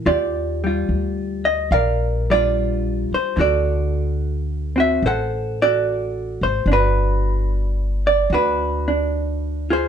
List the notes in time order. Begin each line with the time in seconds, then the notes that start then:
0.06 D#2 F4 G4 D5
0.64 G3 F4
0.89 D2
1.45 D#5
1.71 A#1 A#4 D5 F5
2.30 G3 D4 F4 D5
3.11 C5, muted upright bass stroke
3.36 D2 D3 F#4
3.40 A4 D5
4.76 C4 F#4
4.80 E5
5.02 A1 A4 C5
5.07 F#5
5.62 F#4 A4 D5
6.41 G#1 C5
6.66 G1 D4
6.72 D4 F#4 B4
8.07 D5
8.30 D2 F#4
8.34 D4 B4
8.88 D4
9.70 F4 G#4 C5